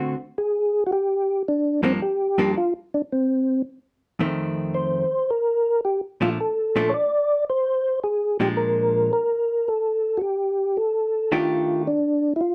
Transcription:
Already playing: hollow-body jazz guitar D3 A3 C4 F#4
0.38 tonewheel organ G#4
0.87 tonewheel organ F#4
0.92 tonewheel organ G4
1.48 tonewheel organ D4
1.83 hollow-body jazz guitar G2 F3 A#3 D4, tonewheel organ C4
2.02 tonewheel organ G4
2.38 hollow-body jazz guitar G2 F3 A#3 D4
2.58 tonewheel organ F4
2.94 tonewheel organ D4
3.12 tonewheel organ C4
4.19 hollow-body jazz guitar F2 D#3 A3 C4
4.74 tonewheel organ C5
5.31 tonewheel organ A#4
5.85 tonewheel organ G4
6.21 hollow-body jazz guitar A#2 F3 A3 D4, tonewheel organ F4
6.40 tonewheel organ A4
6.76 hollow-body jazz guitar A#2 F3 A3 D4
6.89 tonewheel organ C#5
6.94 tonewheel organ D5
7.50 tonewheel organ C5
8.04 tonewheel organ G#4
8.40 hollow-body jazz guitar A#2 F3 G#3 D4, tonewheel organ G4
8.57 tonewheel organ A#4
9.13 tonewheel organ A#4
9.68 tonewheel organ A4
10.17 tonewheel organ F#4 G4
10.77 tonewheel organ A4
11.32 hollow-body jazz guitar D#3 A3 D4 G4, tonewheel organ F4
11.87 tonewheel organ D4
12.36 tonewheel organ E4
12.41 tonewheel organ F4

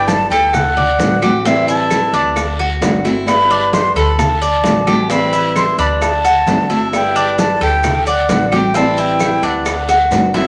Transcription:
Already playing: upright bass G1, nylon-string guitar G3 B3 E4, cuban tres D4
0.07 flute A5, high bongo, high conga, short guiro, maracas
0.30 upright bass D2, cuban tres A4, flute G5, high bongo, high conga, short guiro, maracas
0.53 flute F#5, muted nylon-string guitar stroke, high bongo, high conga, low conga, long guiro, claves, maracas
0.77 cuban tres D5, high conga, low conga
0.99 upright bass A1, nylon-string guitar D3 A3 C4 F#4, high bongo, low bongo, high conga, short guiro, maracas
1.22 nylon-string guitar A3 C4 F#4, cuban tres G4, high bongo, high conga, short guiro, claves, maracas
1.44 nylon-string guitar E3 G3 C4 E4, cuban tres C4, flute E5, high bongo, high conga, long guiro, maracas
1.68 cuban tres E4, flute A5, high bongo, high conga, maracas
1.90 high bongo, high conga, short guiro, claves, maracas
2.13 upright bass D2, cuban tres D4, high conga, short guiro, maracas
2.35 muted nylon-string guitar stroke, high bongo, high conga, long guiro, claves, maracas
2.59 cuban tres F#4, high bongo, high conga
2.81 upright bass G1, nylon-string guitar D3 A3 C4 F#4, high bongo, low bongo, high conga, short guiro, maracas
3.05 nylon-string guitar A3 C4 F#4, cuban tres E4, high bongo, short guiro, maracas
3.26 nylon-string guitar G3 B3 E4, flute B5, high bongo, high conga, long guiro, claves, maracas
3.50 cuban tres D4, high bongo, high conga
3.73 flute C6, high bongo, high conga, short guiro, maracas
3.95 upright bass D2, cuban tres A4, flute B5, high bongo, high conga, short guiro, maracas
4.18 flute A5, muted nylon-string guitar stroke, high bongo, high conga, low conga, long guiro, claves, maracas
4.42 cuban tres D5, high conga, maracas
4.63 upright bass A1, nylon-string guitar D3 A3 C4 F#4, high bongo, low bongo, high conga, short guiro, maracas
4.87 nylon-string guitar A3 C4 F#4, cuban tres G4, high bongo, high conga, short guiro, claves, maracas
5.09 nylon-string guitar E3 G3 C4 E4, cuban tres C4, flute B5, high bongo, long guiro, maracas
5.33 cuban tres E4, high bongo, high conga, maracas
5.56 flute C6, high bongo, high conga, short guiro, claves, maracas
5.78 upright bass D2, cuban tres D4, flute B5, high conga, short guiro, maracas
6.01 flute A5, muted nylon-string guitar stroke, high bongo, high conga, long guiro, claves, maracas
6.25 cuban tres F#4, high bongo, high conga, maracas
6.46 upright bass G1, nylon-string guitar D3 A3 C4 F#4, high bongo, low bongo, high conga, short guiro, maracas
6.70 nylon-string guitar A3 C4 F#4, cuban tres E4, high bongo, short guiro, maracas
6.92 nylon-string guitar G3 B3 E4, flute G5, high bongo, high conga, long guiro, claves, maracas
7.16 cuban tres D4, high bongo, high conga, maracas
7.38 flute A5, high bongo, high conga, short guiro, maracas
7.60 upright bass D2, cuban tres A4, flute G5, high bongo, high conga, short guiro, maracas
7.83 muted nylon-string guitar stroke, high bongo, high conga, low conga, long guiro, claves, maracas
8.06 cuban tres D5, flute F#5, high conga, maracas
8.29 upright bass A1, nylon-string guitar D3 A3 C4 F#4, high bongo, low bongo, high conga, short guiro, maracas
8.52 nylon-string guitar A3 C4 F#4, cuban tres G4, flute G5, high bongo, high conga, short guiro, claves, maracas
8.74 nylon-string guitar E3 G3 C4 E4, cuban tres C4, flute A5, high bongo, high conga, long guiro, maracas
8.97 cuban tres E4, flute G5, high bongo, high conga, maracas
9.20 high bongo, high conga, short guiro, claves, maracas
9.43 upright bass D2, cuban tres D4, flute F#5, high conga, short guiro, maracas
9.65 muted nylon-string guitar stroke, high bongo, high conga, long guiro, claves, maracas
9.89 cuban tres F#4, high bongo, high conga, maracas
10.11 upright bass G1, nylon-string guitar D3 A3 C4 F#4, low bongo, high conga, short guiro, maracas
10.34 nylon-string guitar A3 C4 F#4, cuban tres E4, flute E5, low bongo, high conga, short guiro, maracas

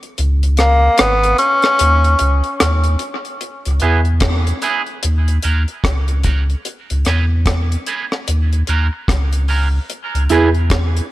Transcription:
0.03 closed hi-hat
0.18 sub bass C#2, closed hi-hat
0.43 closed hi-hat
0.57 tenor saxophone A#3, cross-stick, closed hi-hat
0.98 sub bass G#1, tenor saxophone B3, cross-stick, closed hi-hat
1.24 closed hi-hat
1.38 tenor saxophone C#4, closed hi-hat
1.62 cross-stick, closed hi-hat
1.79 sub bass D#2, closed hi-hat
2.04 closed hi-hat
2.19 sub bass C#2, closed hi-hat
2.44 closed hi-hat
2.60 sub bass D#2, cross-stick, closed hi-hat
2.84 closed hi-hat
2.99 closed hi-hat
3.25 closed hi-hat
3.41 closed hi-hat
3.65 sub bass C#2, closed hi-hat
3.80 sub bass E2, clean electric guitar B3 E4 G#4, closed hi-hat
4.05 closed hi-hat
4.20 kick, cross-stick, closed hi-hat
4.47 closed hi-hat
4.62 clean electric guitar B3 E4 G#4, closed hi-hat
4.86 closed hi-hat
5.03 sub bass D#2, closed hi-hat
5.28 closed hi-hat
5.42 sub bass D#2, clean electric guitar C#4 F#4 A#4, closed hi-hat
5.68 closed hi-hat
5.84 sub bass C#2, kick, cross-stick, closed hi-hat
6.08 closed hi-hat
6.24 clean electric guitar C#4 F#4 A#4, kick, closed hi-hat
6.50 closed hi-hat
6.65 closed hi-hat
6.90 sub bass C#2, closed hi-hat
7.05 sub bass E2, clean electric guitar E4 G#4 B4, cross-stick, closed hi-hat
7.46 kick, cross-stick, closed hi-hat
7.72 closed hi-hat
7.86 clean electric guitar E4 G#4 B4, closed hi-hat
8.12 cross-stick
8.28 sub bass D#2, closed hi-hat
8.53 closed hi-hat
8.67 sub bass D#2, clean electric guitar C#4 F#4 A#4, closed hi-hat
8.93 muted clean electric guitar stroke
9.08 sub bass C#2, kick, cross-stick, closed hi-hat
9.33 closed hi-hat
9.48 clean electric guitar C#4 F#4 A#4, open hi-hat
9.90 closed hi-hat
10.15 sub bass C#2, closed hi-hat
10.29 sub bass E2, clean electric guitar E4 G#4 B4, closed hi-hat
10.55 closed hi-hat
10.70 kick, cross-stick, closed hi-hat
10.97 closed hi-hat

